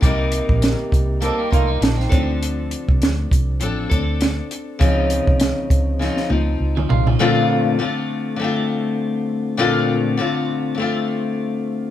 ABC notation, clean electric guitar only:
X:1
M:4/4
L:1/16
Q:"Swing 16ths" 1/4=100
K:Bb
V:1 name="Clean electric guitar"
z8 [CA] [B,G] [A,F] [G,E] [F,D] [E,C]2 z | z16 | z12 z [F,_D] [_A,F] [F,D]- | [F,_D] z12 z3 |
z16 |]